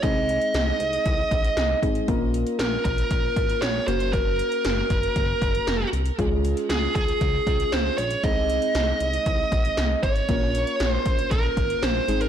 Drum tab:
HH |x-xxx-xxx-xxx-xx|x-xxx-xxx-xxx-xx|x-xxx-xxx-xxx-xx|x-xxx-xxx-xxx-xx|
SD |----o-------o---|----o-------o---|----o-------o---|----o-------o---|
BD |o-------o-o---o-|o-----o-o-o-----|o-----o-o-o-----|o-----o-o-o-----|

HH |x-xxx-xxx-xxx-xx|x-xxx-xxx-xxx-xx|
SD |----o-------o---|----o-------o---|
BD |o-------o-o---o-|o-----o-o-o-----|